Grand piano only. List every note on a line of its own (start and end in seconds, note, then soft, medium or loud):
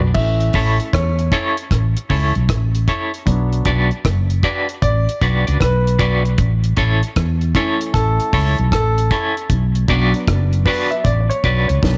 0.01 0.07 B4 soft
0.01 0.07 D5 soft
0.14 1.27 E3 soft
0.14 1.28 A3 soft
0.14 1.28 C#4 medium
0.14 0.95 E5 loud
0.93 1.67 C#5 medium
3.26 3.82 F#3 medium
3.26 3.83 B3 medium
3.26 3.83 D4 medium
4.82 5.63 D5 loud
5.60 6.34 B4 medium
7.54 8.68 E3 medium
7.54 8.68 A3 soft
7.54 8.68 C#4 medium
7.94 8.71 A4 loud
8.72 9.46 A4 loud
9.88 11.80 F#3 medium
9.88 11.81 B3 medium
9.88 11.81 D4 medium
10.65 10.92 B4 medium
10.91 11.05 E5 medium
11.04 11.19 D5 medium
11.20 11.30 D5 medium
11.30 11.67 C#5 medium
11.68 11.97 C#5 medium
11.82 11.97 F#3 soft
11.82 11.97 B3 soft
11.82 11.97 D4 medium